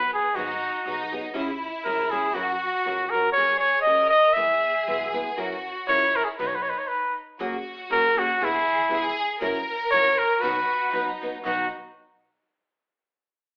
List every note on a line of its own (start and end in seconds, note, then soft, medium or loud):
0.00 0.17 F#2 medium
0.00 0.31 B3 medium
0.00 0.10 B4 medium
0.14 0.37 G#4 medium
0.34 0.67 G#1 medium
0.34 0.51 G#2 medium
0.34 0.51 D#3 medium
0.34 0.51 F#3 medium
0.34 0.51 B3 medium
0.34 0.82 D#4 medium
0.34 0.51 D#4 medium
0.34 1.12 F#4 medium
0.34 0.51 G#4 medium
0.83 1.18 B1 medium
0.83 1.01 F#3 medium
0.83 1.01 B3 medium
0.83 1.31 D#4 medium
0.87 1.02 D#4 medium
0.87 1.02 G#4 medium
1.11 1.25 F#3 medium
1.11 1.26 B3 medium
1.11 1.26 D#4 medium
1.11 1.26 G#4 medium
1.34 1.68 C#2 medium
1.34 1.50 C#3 medium
1.34 1.50 G#3 medium
1.34 1.50 C#4 medium
1.34 1.50 E4 medium
1.34 2.36 E4 medium
1.34 1.51 G#4 medium
1.84 2.19 G#1 medium
1.84 2.01 G#3 medium
1.84 2.01 C#4 medium
1.84 2.01 E4 medium
1.84 2.02 G#4 medium
1.84 2.12 A#4 medium
2.11 2.26 G#3 medium
2.11 2.26 C#4 medium
2.11 2.26 E4 medium
2.11 2.36 G#4 medium
2.11 2.26 G#4 medium
2.34 2.69 F#2 medium
2.34 2.51 F#3 medium
2.34 2.51 C#4 medium
2.34 2.51 F#4 medium
2.34 3.12 F#4 medium
2.34 3.13 F#4 medium
2.34 2.51 A#4 medium
2.85 3.20 C#2 medium
2.85 3.02 F#3 medium
2.85 3.02 C#4 medium
2.85 3.02 F#4 medium
2.85 3.02 A#4 medium
3.10 3.27 F#3 soft
3.10 3.32 A#4 medium
3.14 3.28 C#4 soft
3.14 3.28 F#4 medium
3.14 3.28 A#4 medium
3.32 3.83 G#4 medium
3.32 3.59 C#5 medium
3.37 3.70 F#2 medium
3.37 3.53 F#3 medium
3.37 3.53 C#4 medium
3.37 3.53 G#4 medium
3.37 3.53 A#4 medium
3.59 3.81 C#5 medium
3.82 4.03 F#3 soft
3.82 4.09 D#5 medium
3.86 4.19 C#2 medium
3.86 4.03 C#4 medium
3.86 4.03 G#4 medium
3.86 4.31 A#4 medium
3.86 4.04 A#4 medium
4.09 4.35 D#5 loud
4.33 4.53 E3 medium
4.33 4.53 G#3 medium
4.33 4.53 E4 medium
4.33 4.39 A#4 medium
4.33 5.12 E5 medium
4.37 4.71 E2 medium
4.37 4.53 B3 medium
4.37 5.39 G#4 medium
4.37 4.53 B4 medium
4.87 5.21 B1 medium
4.87 5.03 G#3 medium
4.87 5.04 B3 medium
4.87 5.04 E4 medium
4.87 5.04 B4 medium
5.12 5.28 G#3 medium
5.12 5.28 B3 medium
5.12 5.28 E4 medium
5.12 5.29 B4 medium
5.37 5.70 F#2 medium
5.37 5.54 F#3 medium
5.37 5.54 C#4 medium
5.37 5.54 E4 medium
5.37 5.89 F#4 medium
5.37 5.54 A#4 medium
5.87 6.21 C#2 loud
5.87 6.03 F#3 medium
5.87 6.04 C#4 medium
5.87 6.04 E4 medium
5.87 6.39 E4 medium
5.87 6.05 A#4 medium
5.87 6.17 C#5 loud
6.16 6.26 A#4 medium
6.24 6.27 G#4 medium
6.39 6.72 B1 medium
6.39 6.54 B2 medium
6.39 6.55 D#3 medium
6.39 6.55 F#3 medium
6.39 6.55 B3 medium
6.39 7.12 D#4 medium
6.39 6.55 D#4 medium
6.39 6.49 B4 medium
6.39 6.55 B4 medium
6.47 6.57 C#5 medium
6.55 6.64 B4 medium
6.62 6.71 C#5 medium
6.70 6.80 B4 medium
6.78 6.89 C#5 medium
6.88 7.16 B4 medium
7.39 7.57 F#1 loud
7.39 7.55 F#3 medium
7.39 7.56 A#3 medium
7.39 7.55 C#4 medium
7.39 8.37 F#4 medium
7.39 7.56 F#4 medium
7.39 7.56 G#4 medium
7.90 8.07 F#1 medium
7.90 8.06 A#3 medium
7.90 8.06 C#4 medium
7.90 8.06 F#4 medium
7.90 8.07 G#4 medium
7.90 8.20 A#4 loud
8.15 8.30 A#3 soft
8.15 8.31 C#4 medium
8.15 8.31 F#4 soft
8.15 8.46 F#4 medium
8.15 8.31 G#4 medium
8.41 8.58 E1 loud
8.41 8.56 E3 medium
8.41 8.57 G#3 medium
8.41 8.57 B3 medium
8.41 8.57 E4 medium
8.41 9.19 E4 medium
8.41 8.87 G#4 medium
8.41 8.57 G#4 medium
8.89 9.07 E1 medium
8.89 9.05 G#3 medium
8.89 9.06 B3 medium
8.89 9.06 E4 medium
8.89 9.37 G#4 loud
8.89 9.06 G#4 medium
9.40 9.59 F#1 loud
9.40 9.57 F#3 medium
9.40 9.56 C#4 medium
9.40 9.57 E4 medium
9.40 10.37 A#4 loud
9.40 9.57 A#4 medium
9.91 10.10 A#1 loud
9.91 10.08 F#3 medium
9.91 10.08 C#4 medium
9.91 10.08 E4 medium
9.91 10.08 A#4 medium
9.91 10.20 C#5 loud
10.19 10.43 A#4 medium
10.41 10.60 B1 loud
10.41 10.58 B2 medium
10.41 10.58 D#3 medium
10.41 10.58 F#3 medium
10.41 10.58 B3 medium
10.41 10.58 D#4 medium
10.41 10.92 F#4 medium
10.41 11.19 B4 medium
10.41 10.58 B4 medium
10.92 11.10 F#2 medium
10.92 11.09 F#3 medium
10.92 11.09 B3 medium
10.92 11.42 D#4 medium
10.92 11.09 D#4 medium
10.92 11.10 B4 medium
11.21 11.35 F#3 medium
11.21 11.35 B3 medium
11.21 11.35 D#4 medium
11.21 11.36 B4 medium
11.43 11.68 B1 loud
11.43 11.65 B2 medium
11.43 11.66 D#3 medium
11.43 11.65 F#3 medium
11.43 11.66 B3 medium
11.43 11.68 D#4 medium
11.43 11.66 D#4 medium
11.43 11.68 F#4 medium
11.43 11.66 B4 medium